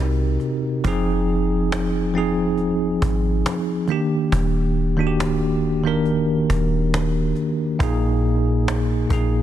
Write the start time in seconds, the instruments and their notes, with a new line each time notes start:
Already playing: 808-style bass C2, tine electric piano C3 C4 D#4 F#4 G4 A#4
0.40 cajon slap
0.84 808-style bass F1, tine electric piano F3 C4 D#4 G#4, cajon bass
1.72 cajon slap
2.14 tine electric piano F3 C4 D#4 G#4
2.58 cajon slap
3.02 808-style bass G#1, cajon bass
3.46 cajon slap
3.87 tine electric piano D#3 A#3 D4, cajon slap
3.92 tine electric piano G4
4.32 808-style bass D#1, cajon bass
4.97 tine electric piano D#3 A#3 D4 F#4
5.07 tine electric piano G4
5.20 cajon slap
5.84 tine electric piano D#3 A#3 D4 A#4
6.05 cajon slap
6.50 808-style bass D#1, cajon bass
6.94 cajon slap
7.36 cajon slap
7.79 808-style bass A#1, tine electric piano A#2 A#3 D#4 G#4, cajon bass
8.68 cajon slap
9.09 808-style bass A#1, tine electric piano A#2 A#3 D#4 G#4, cajon bass